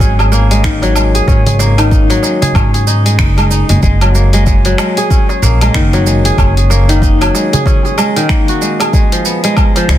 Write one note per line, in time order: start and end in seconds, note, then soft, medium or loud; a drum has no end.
0.00 1.22 G#1 medium
0.00 0.30 D#3 medium
0.00 0.69 F#3 loud
0.00 0.50 G#3 medium
0.00 0.38 B3 medium
0.00 1.27 C#4 medium
0.00 0.19 G#4 loud
0.00 kick loud
0.00 shaker soft
0.19 1.14 G#4 medium
0.19 darbuka tek medium
0.19 low woodblock medium
0.19 shaker soft
0.32 1.59 A#3 loud
0.32 darbuka ka soft
0.32 shaker medium
0.51 0.69 G#3 loud
0.51 open hi-hat soft
0.51 shaker soft
0.64 1.77 D#3 loud
0.64 finger snap medium
0.64 kick loud
0.64 shaker soft
0.82 1.80 F#3 loud
0.82 open hi-hat soft
0.82 darbuka ka medium
0.82 darbuka tek medium
0.82 shaker soft
0.96 1.80 G#3 medium
0.96 low woodblock medium
0.96 shaker medium
1.15 1.46 G#4 loud
1.15 open hi-hat medium
1.15 shaker soft
1.27 2.17 G#1 medium
1.27 2.54 C#4 medium
1.27 kick loud
1.27 shaker soft
1.46 2.41 G#4 medium
1.46 open hi-hat soft
1.46 darbuka dum medium
1.46 shaker soft
1.59 3.52 A#3 loud
1.59 darbuka tek medium
1.59 shaker medium
1.78 3.88 D#3 loud
1.78 open hi-hat soft
1.78 darbuka ka soft
1.78 low woodblock medium
1.78 shaker soft
1.91 2.87 D#4 medium
1.91 kick loud
1.91 shaker soft
2.10 3.88 F#3 loud
2.10 open hi-hat soft
2.10 darbuka tek medium
2.10 shaker soft
2.23 3.04 G#3 medium
2.23 darbuka tek medium
2.23 shaker medium
2.42 2.73 G#4 loud
2.42 open hi-hat medium
2.42 darbuka ka soft
2.42 darbuka dum medium
2.42 shaker soft
2.55 3.18 G#2 medium
2.55 4.29 C#4 medium
2.55 kick loud
2.55 darbuka tek medium
2.55 low woodblock medium
2.55 shaker soft
2.74 4.10 G#4 medium
2.74 open hi-hat soft
2.74 darbuka ka soft
2.74 shaker soft
2.87 3.18 D#4 medium
2.87 shaker medium
3.05 3.36 G#3 medium
3.05 open hi-hat medium
3.05 shaker soft
3.19 3.61 F#1 medium
3.19 3.50 D#4 medium
3.19 finger snap medium
3.19 kick loud
3.19 shaker soft
3.37 3.69 G#3 medium
3.37 open hi-hat soft
3.37 low woodblock medium
3.37 shaker soft
3.50 5.13 D#4 medium
3.50 shaker medium
3.69 3.79 F#1 loud
3.69 3.82 G#3 medium
3.69 open hi-hat medium
3.69 darbuka ka medium
3.69 shaker soft
3.83 4.73 F#1 loud
3.83 4.32 G#3 medium
3.83 kick loud
3.83 shaker soft
4.01 4.64 F#3 medium
4.01 open hi-hat soft
4.01 low woodblock medium
4.01 shaker soft
4.15 5.42 A#3 medium
4.15 shaker medium
4.33 4.45 G#3 loud
4.33 open hi-hat soft
4.33 darbuka ka soft
4.33 shaker soft
4.47 4.77 G#3 medium
4.47 kick loud
4.47 shaker soft
4.65 5.79 F#3 medium
4.65 open hi-hat soft
4.65 darbuka tek medium
4.65 shaker soft
4.78 5.60 G#3 medium
4.78 finger snap medium
4.78 darbuka tek medium
4.78 low woodblock medium
4.78 shaker medium
4.97 5.29 G#4 loud
4.97 open hi-hat medium
4.97 darbuka ka medium
4.97 shaker soft
5.11 6.38 C#4 medium
5.11 kick loud
5.11 shaker soft
5.29 6.25 G#4 medium
5.29 darbuka tek medium
5.29 shaker soft
5.42 5.67 A#1 loud
5.42 6.70 A#3 loud
5.42 darbuka ka soft
5.42 shaker medium
5.61 5.79 G#3 loud
5.61 open hi-hat medium
5.61 low woodblock medium
5.61 shaker soft
5.74 6.32 F#1 medium
5.74 6.88 D#3 loud
5.74 finger snap medium
5.74 kick loud
5.74 shaker soft
5.93 6.91 F#3 loud
5.93 open hi-hat soft
5.93 darbuka ka medium
5.93 darbuka tek medium
5.93 shaker soft
6.06 6.91 G#3 medium
6.06 shaker medium
6.25 6.57 G#4 loud
6.25 open hi-hat medium
6.25 shaker soft
6.38 7.28 F#1 loud
6.38 7.66 C#4 medium
6.38 kick loud
6.38 low woodblock medium
6.38 shaker soft
6.57 7.53 G#4 medium
6.57 open hi-hat soft
6.57 shaker soft
6.70 8.29 A#3 medium
6.70 darbuka tek medium
6.70 shaker medium
6.89 8.15 D#3 loud
6.89 open hi-hat medium
6.89 darbuka ka medium
6.89 shaker soft
7.02 8.64 D#4 medium
7.02 kick loud
7.02 shaker soft
7.21 8.19 F#3 loud
7.21 open hi-hat soft
7.21 darbuka tek medium
7.21 low woodblock medium
7.21 shaker soft
7.35 7.96 G#3 medium
7.35 darbuka tek medium
7.35 shaker medium
7.53 7.84 G#4 loud
7.53 open hi-hat medium
7.53 darbuka ka soft
7.53 darbuka dum medium
7.53 shaker soft
7.66 9.40 C#4 medium
7.66 kick loud
7.66 darbuka tek medium
7.66 shaker soft
7.85 8.80 G#4 medium
7.85 darbuka ka soft
7.85 shaker soft
7.98 8.19 G#3 loud
7.98 low woodblock medium
7.98 shaker medium
8.16 8.98 D#3 loud
8.16 open hi-hat medium
8.16 shaker soft
8.29 9.31 A#3 medium
8.29 finger snap medium
8.29 kick loud
8.29 shaker soft
8.48 9.18 F#4 medium
8.48 open hi-hat soft
8.48 shaker soft
8.61 8.93 G#3 medium
8.61 shaker medium
8.80 9.98 G#4 medium
8.80 open hi-hat medium
8.80 darbuka ka medium
8.80 low woodblock medium
8.80 shaker soft
8.93 9.43 G#3 medium
8.93 kick loud
8.93 shaker soft
9.12 9.75 F3 medium
9.12 open hi-hat soft
9.12 shaker soft
9.25 9.98 B3 medium
9.25 shaker medium
9.44 9.57 G#3 loud
9.44 open hi-hat medium
9.44 darbuka ka medium
9.44 shaker soft
9.57 9.88 G#3 medium
9.57 kick loud
9.57 low woodblock medium
9.57 shaker soft
9.76 9.98 F3 loud
9.76 open hi-hat soft
9.76 darbuka tek medium
9.76 shaker soft
9.88 9.98 C#2 medium
9.88 9.98 G#3 medium
9.88 finger snap medium
9.88 darbuka tek medium
9.88 shaker medium